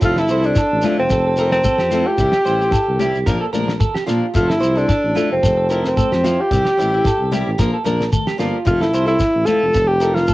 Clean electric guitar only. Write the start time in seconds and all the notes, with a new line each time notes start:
0.19 A4
0.31 C5
0.58 A4
0.85 F4
1.12 A4
1.26 A4
1.39 A#4
1.65 A4
1.79 G4
1.91 F4
2.33 G4
2.45 C5
2.72 A4
3.00 G4
3.26 A#4
3.41 A4
3.53 A#4
3.80 A4
3.95 G4
4.07 F4
4.48 A4
4.61 C5
4.89 A4
5.16 F4
5.43 A4
5.57 A4
5.70 A#4
5.97 A4
6.12 G4
6.24 F4
6.66 G4
6.79 muted clean electric guitar stroke
7.06 A4
7.33 G4
7.59 A#4
7.74 A4
7.85 A#4
8.13 A4
8.27 G4
8.40 F4
8.81 A4
8.95 C5
9.22 muted clean electric guitar stroke
9.49 F4
9.75 A4
10.01 A#4
10.29 A4